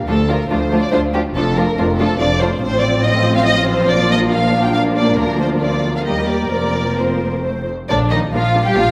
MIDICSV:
0, 0, Header, 1, 6, 480
1, 0, Start_track
1, 0, Key_signature, -2, "major"
1, 0, Tempo, 425834
1, 90, Time_signature, 3, 2, 24, 8
1, 6329, Tempo, 456969
1, 8729, Tempo, 434468
1, 9845, End_track
2, 0, Start_track
2, 0, Title_t, "Violin section"
2, 0, Program_c, 0, 48
2, 90, Note_on_c, 0, 69, 91
2, 326, Note_off_c, 0, 69, 0
2, 332, Note_on_c, 0, 70, 92
2, 569, Note_on_c, 0, 72, 82
2, 571, Note_off_c, 0, 70, 0
2, 920, Note_on_c, 0, 74, 91
2, 922, Note_off_c, 0, 72, 0
2, 1034, Note_on_c, 0, 72, 95
2, 1046, Note_off_c, 0, 74, 0
2, 1124, Note_off_c, 0, 72, 0
2, 1283, Note_on_c, 0, 67, 83
2, 1373, Note_off_c, 0, 67, 0
2, 1530, Note_on_c, 0, 69, 98
2, 1756, Note_on_c, 0, 70, 88
2, 1765, Note_off_c, 0, 69, 0
2, 2235, Note_on_c, 0, 69, 99
2, 2237, Note_off_c, 0, 70, 0
2, 2471, Note_off_c, 0, 69, 0
2, 2473, Note_on_c, 0, 74, 103
2, 2708, Note_off_c, 0, 74, 0
2, 2714, Note_on_c, 0, 72, 92
2, 2932, Note_off_c, 0, 72, 0
2, 2945, Note_on_c, 0, 72, 119
2, 3178, Note_off_c, 0, 72, 0
2, 3178, Note_on_c, 0, 74, 99
2, 3417, Note_off_c, 0, 74, 0
2, 3427, Note_on_c, 0, 75, 101
2, 3783, Note_off_c, 0, 75, 0
2, 3791, Note_on_c, 0, 77, 109
2, 3898, Note_on_c, 0, 75, 108
2, 3905, Note_off_c, 0, 77, 0
2, 4139, Note_off_c, 0, 75, 0
2, 4149, Note_on_c, 0, 72, 98
2, 4384, Note_off_c, 0, 72, 0
2, 4388, Note_on_c, 0, 74, 116
2, 4628, Note_off_c, 0, 74, 0
2, 4635, Note_on_c, 0, 75, 99
2, 4725, Note_off_c, 0, 75, 0
2, 4871, Note_on_c, 0, 77, 102
2, 5224, Note_off_c, 0, 77, 0
2, 5248, Note_on_c, 0, 79, 100
2, 5343, Note_on_c, 0, 77, 95
2, 5360, Note_off_c, 0, 79, 0
2, 5433, Note_off_c, 0, 77, 0
2, 5604, Note_on_c, 0, 74, 86
2, 5839, Note_off_c, 0, 74, 0
2, 5852, Note_on_c, 0, 70, 93
2, 6085, Note_off_c, 0, 70, 0
2, 6093, Note_on_c, 0, 72, 87
2, 6183, Note_off_c, 0, 72, 0
2, 6338, Note_on_c, 0, 74, 83
2, 6671, Note_off_c, 0, 74, 0
2, 6694, Note_on_c, 0, 77, 78
2, 6737, Note_off_c, 0, 77, 0
2, 6791, Note_on_c, 0, 75, 77
2, 7026, Note_off_c, 0, 75, 0
2, 7034, Note_on_c, 0, 74, 81
2, 7262, Note_off_c, 0, 74, 0
2, 7275, Note_on_c, 0, 74, 88
2, 7750, Note_off_c, 0, 74, 0
2, 7756, Note_on_c, 0, 72, 68
2, 8245, Note_off_c, 0, 72, 0
2, 8736, Note_on_c, 0, 74, 93
2, 8824, Note_off_c, 0, 74, 0
2, 8963, Note_on_c, 0, 75, 85
2, 9052, Note_off_c, 0, 75, 0
2, 9204, Note_on_c, 0, 77, 88
2, 9558, Note_off_c, 0, 77, 0
2, 9568, Note_on_c, 0, 79, 106
2, 9682, Note_on_c, 0, 77, 100
2, 9688, Note_off_c, 0, 79, 0
2, 9845, Note_off_c, 0, 77, 0
2, 9845, End_track
3, 0, Start_track
3, 0, Title_t, "Violin section"
3, 0, Program_c, 1, 48
3, 93, Note_on_c, 1, 65, 58
3, 98, Note_on_c, 1, 62, 57
3, 183, Note_off_c, 1, 65, 0
3, 188, Note_off_c, 1, 62, 0
3, 327, Note_on_c, 1, 62, 64
3, 332, Note_on_c, 1, 65, 60
3, 417, Note_off_c, 1, 62, 0
3, 422, Note_off_c, 1, 65, 0
3, 568, Note_on_c, 1, 65, 60
3, 571, Note_on_c, 1, 62, 60
3, 658, Note_off_c, 1, 65, 0
3, 661, Note_off_c, 1, 62, 0
3, 814, Note_on_c, 1, 65, 63
3, 815, Note_on_c, 1, 62, 58
3, 904, Note_off_c, 1, 65, 0
3, 905, Note_off_c, 1, 62, 0
3, 1044, Note_on_c, 1, 65, 71
3, 1045, Note_on_c, 1, 62, 68
3, 1134, Note_off_c, 1, 65, 0
3, 1135, Note_off_c, 1, 62, 0
3, 1287, Note_on_c, 1, 62, 61
3, 1287, Note_on_c, 1, 65, 59
3, 1377, Note_off_c, 1, 65, 0
3, 1378, Note_off_c, 1, 62, 0
3, 1532, Note_on_c, 1, 65, 57
3, 1534, Note_on_c, 1, 62, 63
3, 1622, Note_off_c, 1, 65, 0
3, 1625, Note_off_c, 1, 62, 0
3, 1775, Note_on_c, 1, 65, 61
3, 1777, Note_on_c, 1, 62, 60
3, 1866, Note_off_c, 1, 65, 0
3, 1868, Note_off_c, 1, 62, 0
3, 2009, Note_on_c, 1, 65, 66
3, 2011, Note_on_c, 1, 62, 73
3, 2099, Note_off_c, 1, 65, 0
3, 2102, Note_off_c, 1, 62, 0
3, 2251, Note_on_c, 1, 62, 66
3, 2253, Note_on_c, 1, 65, 72
3, 2341, Note_off_c, 1, 62, 0
3, 2343, Note_off_c, 1, 65, 0
3, 2485, Note_on_c, 1, 65, 66
3, 2487, Note_on_c, 1, 62, 63
3, 2575, Note_off_c, 1, 65, 0
3, 2578, Note_off_c, 1, 62, 0
3, 2725, Note_on_c, 1, 62, 68
3, 2726, Note_on_c, 1, 65, 67
3, 2816, Note_off_c, 1, 62, 0
3, 2817, Note_off_c, 1, 65, 0
3, 2950, Note_on_c, 1, 65, 75
3, 2953, Note_on_c, 1, 60, 67
3, 4343, Note_off_c, 1, 60, 0
3, 4384, Note_on_c, 1, 62, 76
3, 5793, Note_off_c, 1, 65, 0
3, 5847, Note_on_c, 1, 65, 60
3, 6747, Note_off_c, 1, 62, 0
3, 6752, Note_off_c, 1, 65, 0
3, 6796, Note_on_c, 1, 67, 59
3, 6796, Note_on_c, 1, 70, 67
3, 7243, Note_off_c, 1, 67, 0
3, 7275, Note_on_c, 1, 60, 54
3, 8208, Note_off_c, 1, 70, 0
3, 8254, Note_on_c, 1, 72, 54
3, 8468, Note_off_c, 1, 60, 0
3, 8494, Note_off_c, 1, 72, 0
3, 8732, Note_on_c, 1, 62, 83
3, 8956, Note_off_c, 1, 62, 0
3, 8970, Note_on_c, 1, 63, 79
3, 9059, Note_off_c, 1, 63, 0
3, 9212, Note_on_c, 1, 65, 85
3, 9563, Note_off_c, 1, 65, 0
3, 9575, Note_on_c, 1, 67, 88
3, 9689, Note_off_c, 1, 67, 0
3, 9695, Note_on_c, 1, 65, 93
3, 9845, Note_off_c, 1, 65, 0
3, 9845, End_track
4, 0, Start_track
4, 0, Title_t, "Viola section"
4, 0, Program_c, 2, 48
4, 101, Note_on_c, 2, 53, 62
4, 103, Note_on_c, 2, 57, 68
4, 191, Note_off_c, 2, 53, 0
4, 193, Note_off_c, 2, 57, 0
4, 342, Note_on_c, 2, 57, 52
4, 345, Note_on_c, 2, 53, 54
4, 432, Note_off_c, 2, 57, 0
4, 435, Note_off_c, 2, 53, 0
4, 575, Note_on_c, 2, 57, 70
4, 581, Note_on_c, 2, 53, 71
4, 666, Note_off_c, 2, 57, 0
4, 671, Note_off_c, 2, 53, 0
4, 814, Note_on_c, 2, 53, 59
4, 817, Note_on_c, 2, 57, 62
4, 904, Note_off_c, 2, 53, 0
4, 907, Note_off_c, 2, 57, 0
4, 1047, Note_on_c, 2, 53, 64
4, 1048, Note_on_c, 2, 57, 57
4, 1137, Note_off_c, 2, 53, 0
4, 1138, Note_off_c, 2, 57, 0
4, 1290, Note_on_c, 2, 53, 62
4, 1291, Note_on_c, 2, 57, 62
4, 1380, Note_off_c, 2, 53, 0
4, 1381, Note_off_c, 2, 57, 0
4, 1529, Note_on_c, 2, 53, 68
4, 1531, Note_on_c, 2, 57, 73
4, 1620, Note_off_c, 2, 53, 0
4, 1621, Note_off_c, 2, 57, 0
4, 1772, Note_on_c, 2, 53, 56
4, 1774, Note_on_c, 2, 57, 60
4, 1862, Note_off_c, 2, 53, 0
4, 1864, Note_off_c, 2, 57, 0
4, 2018, Note_on_c, 2, 53, 70
4, 2018, Note_on_c, 2, 57, 71
4, 2108, Note_off_c, 2, 53, 0
4, 2108, Note_off_c, 2, 57, 0
4, 2248, Note_on_c, 2, 53, 65
4, 2248, Note_on_c, 2, 57, 72
4, 2338, Note_off_c, 2, 53, 0
4, 2339, Note_off_c, 2, 57, 0
4, 2468, Note_on_c, 2, 53, 63
4, 2473, Note_on_c, 2, 57, 60
4, 2559, Note_off_c, 2, 53, 0
4, 2564, Note_off_c, 2, 57, 0
4, 2712, Note_on_c, 2, 57, 65
4, 2714, Note_on_c, 2, 53, 69
4, 2802, Note_off_c, 2, 57, 0
4, 2804, Note_off_c, 2, 53, 0
4, 2944, Note_on_c, 2, 60, 77
4, 2950, Note_on_c, 2, 53, 84
4, 4339, Note_off_c, 2, 60, 0
4, 4385, Note_on_c, 2, 58, 86
4, 5793, Note_off_c, 2, 53, 0
4, 5840, Note_on_c, 2, 53, 69
4, 6749, Note_off_c, 2, 53, 0
4, 6793, Note_on_c, 2, 55, 59
4, 7231, Note_off_c, 2, 58, 0
4, 7241, Note_off_c, 2, 55, 0
4, 7276, Note_on_c, 2, 58, 63
4, 7278, Note_on_c, 2, 53, 60
4, 8206, Note_off_c, 2, 58, 0
4, 8253, Note_on_c, 2, 57, 47
4, 8469, Note_off_c, 2, 53, 0
4, 8494, Note_off_c, 2, 57, 0
4, 8730, Note_on_c, 2, 62, 75
4, 8732, Note_on_c, 2, 58, 71
4, 8818, Note_off_c, 2, 62, 0
4, 8820, Note_off_c, 2, 58, 0
4, 8981, Note_on_c, 2, 58, 62
4, 8985, Note_on_c, 2, 62, 60
4, 9069, Note_off_c, 2, 58, 0
4, 9073, Note_off_c, 2, 62, 0
4, 9213, Note_on_c, 2, 58, 69
4, 9216, Note_on_c, 2, 62, 75
4, 9302, Note_off_c, 2, 58, 0
4, 9304, Note_off_c, 2, 62, 0
4, 9438, Note_on_c, 2, 58, 64
4, 9438, Note_on_c, 2, 62, 65
4, 9526, Note_off_c, 2, 58, 0
4, 9527, Note_off_c, 2, 62, 0
4, 9676, Note_on_c, 2, 62, 65
4, 9677, Note_on_c, 2, 58, 69
4, 9765, Note_off_c, 2, 58, 0
4, 9765, Note_off_c, 2, 62, 0
4, 9845, End_track
5, 0, Start_track
5, 0, Title_t, "Cello section"
5, 0, Program_c, 3, 48
5, 84, Note_on_c, 3, 38, 83
5, 511, Note_off_c, 3, 38, 0
5, 567, Note_on_c, 3, 38, 77
5, 992, Note_off_c, 3, 38, 0
5, 1047, Note_on_c, 3, 38, 73
5, 1472, Note_off_c, 3, 38, 0
5, 1527, Note_on_c, 3, 41, 86
5, 1950, Note_off_c, 3, 41, 0
5, 2013, Note_on_c, 3, 41, 81
5, 2427, Note_off_c, 3, 41, 0
5, 2489, Note_on_c, 3, 41, 82
5, 2900, Note_off_c, 3, 41, 0
5, 2960, Note_on_c, 3, 45, 81
5, 4347, Note_off_c, 3, 45, 0
5, 4395, Note_on_c, 3, 46, 80
5, 5813, Note_off_c, 3, 46, 0
5, 5848, Note_on_c, 3, 38, 76
5, 6795, Note_off_c, 3, 38, 0
5, 6798, Note_on_c, 3, 39, 65
5, 7278, Note_off_c, 3, 39, 0
5, 7285, Note_on_c, 3, 41, 65
5, 8490, Note_off_c, 3, 41, 0
5, 8728, Note_on_c, 3, 50, 80
5, 8816, Note_off_c, 3, 50, 0
5, 8967, Note_on_c, 3, 51, 79
5, 9056, Note_off_c, 3, 51, 0
5, 9194, Note_on_c, 3, 53, 90
5, 9553, Note_off_c, 3, 53, 0
5, 9554, Note_on_c, 3, 55, 71
5, 9678, Note_off_c, 3, 55, 0
5, 9682, Note_on_c, 3, 53, 96
5, 9845, Note_off_c, 3, 53, 0
5, 9845, End_track
6, 0, Start_track
6, 0, Title_t, "Double bass section"
6, 0, Program_c, 4, 48
6, 82, Note_on_c, 4, 38, 74
6, 510, Note_off_c, 4, 38, 0
6, 573, Note_on_c, 4, 38, 80
6, 995, Note_off_c, 4, 38, 0
6, 1051, Note_on_c, 4, 38, 69
6, 1474, Note_off_c, 4, 38, 0
6, 1537, Note_on_c, 4, 29, 94
6, 1955, Note_off_c, 4, 29, 0
6, 2017, Note_on_c, 4, 29, 83
6, 2429, Note_off_c, 4, 29, 0
6, 2485, Note_on_c, 4, 29, 71
6, 2898, Note_off_c, 4, 29, 0
6, 2959, Note_on_c, 4, 33, 84
6, 4346, Note_off_c, 4, 33, 0
6, 4391, Note_on_c, 4, 34, 86
6, 5811, Note_off_c, 4, 34, 0
6, 5842, Note_on_c, 4, 38, 76
6, 6792, Note_off_c, 4, 38, 0
6, 6802, Note_on_c, 4, 39, 60
6, 7280, Note_off_c, 4, 39, 0
6, 7281, Note_on_c, 4, 29, 66
6, 8488, Note_off_c, 4, 29, 0
6, 8729, Note_on_c, 4, 34, 89
6, 9155, Note_off_c, 4, 34, 0
6, 9205, Note_on_c, 4, 34, 80
6, 9629, Note_off_c, 4, 34, 0
6, 9691, Note_on_c, 4, 34, 83
6, 9845, Note_off_c, 4, 34, 0
6, 9845, End_track
0, 0, End_of_file